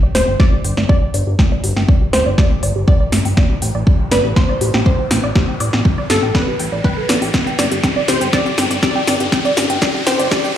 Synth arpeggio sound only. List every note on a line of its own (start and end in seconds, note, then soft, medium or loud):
0.03 0.10 D5 loud
0.15 0.22 G4 medium
0.28 0.35 G5 medium
0.40 0.47 D5 loud
0.53 0.59 G4 medium
0.65 0.72 G5 medium
0.77 0.84 D5 loud
0.89 0.97 G4 medium
1.02 1.09 G5 medium
1.14 1.22 D5 loud
1.27 1.34 G4 medium
1.39 1.46 G5 medium
1.52 1.59 D5 loud
1.64 1.71 G4 medium
1.77 1.83 G5 medium
1.89 1.96 D5 loud
2.01 2.08 G4 medium
2.13 2.21 G5 medium
2.26 2.33 D5 loud
2.38 2.45 G4 medium
2.51 2.58 G5 medium
2.63 2.70 D5 loud
2.76 2.83 G4 medium
2.88 2.95 G5 medium
3.00 3.07 D5 loud
3.13 3.20 G4 medium
3.25 3.32 G5 medium
3.37 3.45 D5 loud
3.50 3.57 G4 medium
3.62 3.69 G5 medium
3.75 3.82 D5 loud
3.87 3.94 G4 medium
4.00 4.07 G5 medium
4.12 4.19 D5 loud
4.24 4.31 G4 medium
4.36 4.44 G5 medium
4.49 4.56 D5 loud
4.61 4.69 G4 medium
4.74 4.81 G5 medium
4.86 4.93 D5 loud
4.99 5.06 G4 medium
5.11 5.18 G5 medium
5.24 5.31 D5 loud
5.36 5.43 G4 medium
5.48 5.55 G5 medium
5.60 5.68 D5 loud
5.73 5.80 G4 medium
5.85 5.93 G5 medium
5.98 6.05 D5 loud
6.10 6.17 G4 medium
6.23 6.30 G5 medium
6.35 6.42 D5 loud
6.48 6.54 G4 medium
6.60 6.67 G5 medium
6.72 6.83 D5 medium
6.84 6.92 G5 loud
6.97 7.04 A4 medium
7.09 7.16 D5 loud
7.22 7.32 G4 medium
7.34 7.41 G4 medium
7.47 7.54 G5 medium
7.59 7.66 D5 loud
7.71 7.78 G4 medium
7.83 7.91 G5 medium
7.96 8.03 D5 loud
8.08 8.16 G4 medium
8.21 8.28 G5 medium
8.33 8.41 D5 loud
8.46 8.53 G4 medium
8.58 8.65 G5 medium
8.71 8.78 D5 loud
8.83 8.90 G4 medium
8.96 9.02 G5 medium
9.07 9.15 D5 loud
9.20 9.27 G4 medium
9.32 9.40 G5 medium
9.45 9.52 D5 loud
9.57 9.64 G4 medium
9.70 9.77 G5 medium
9.82 9.89 D5 loud
9.95 10.02 G4 medium
10.07 10.14 G5 medium
10.20 10.26 D5 loud
10.31 10.39 G4 medium
10.44 10.51 G5 medium